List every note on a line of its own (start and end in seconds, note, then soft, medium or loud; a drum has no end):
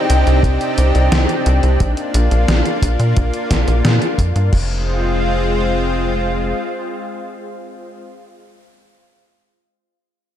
0.00 1.77 C3 medium
0.00 1.77 C4 medium
0.00 4.49 D4 medium
0.00 1.77 D#4 medium
0.00 1.77 G4 medium
0.10 0.24 C2 medium
0.10 closed hi-hat medium
0.27 0.42 C2 medium
0.27 closed hi-hat soft
0.43 0.58 C2 loud
0.43 kick loud
0.43 closed hi-hat medium
0.61 closed hi-hat soft
0.78 0.93 C2 medium
0.78 closed hi-hat medium
0.95 1.10 C2 medium
0.95 closed hi-hat soft
1.12 1.27 C2 loud
1.12 snare loud
1.12 closed hi-hat medium
1.29 closed hi-hat soft
1.46 1.61 C2 medium
1.46 closed hi-hat medium
1.63 1.78 C2 medium
1.63 closed hi-hat soft
1.80 1.95 A#1 loud
1.80 4.50 A#3 medium
1.80 4.50 F4 medium
1.80 kick loud
1.80 closed hi-hat medium
1.97 closed hi-hat soft
2.14 2.29 A#1 loud
2.14 closed hi-hat medium
2.31 2.46 A#1 medium
2.31 closed hi-hat soft
2.48 2.63 A#1 loud
2.48 snare loud
2.48 closed hi-hat medium
2.65 closed hi-hat soft
2.82 2.97 A#1 medium
2.82 kick medium
2.82 closed hi-hat medium
3.00 3.14 A#2 medium
3.00 closed hi-hat soft
3.16 3.32 A#1 loud
3.16 kick loud
3.16 closed hi-hat medium
3.34 closed hi-hat soft
3.51 3.65 A#1 medium
3.51 kick medium
3.51 snare medium
3.51 closed hi-hat medium
3.68 3.82 A#1 medium
3.68 closed hi-hat soft
3.85 3.99 A#2 loud
3.85 snare loud
3.85 closed hi-hat medium
4.02 closed hi-hat soft
4.18 4.33 F2 medium
4.18 kick loud
4.18 closed hi-hat medium
4.36 4.50 G2 medium
4.36 closed hi-hat soft
4.53 6.53 F1 medium
4.53 8.02 G#3 medium
4.53 8.01 C4 medium
4.53 8.01 F4 medium
4.53 kick loud
4.53 crash medium